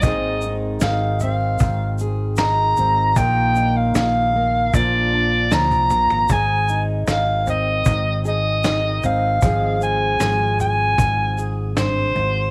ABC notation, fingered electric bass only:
X:1
M:4/4
L:1/16
Q:1/4=77
K:Ablyd
V:1 name="Fingered electric bass" clef=bass
A,,,4 A,,,4 A,,,6 A,,,2 | B,,,4 B,,,4 B,,,4 D,, C,, B,,, A,,, | A,,,4 A,,,4 A,,,6 A,,,2 | A,,,4 A,,,4 A,,,6 A,,,2 |]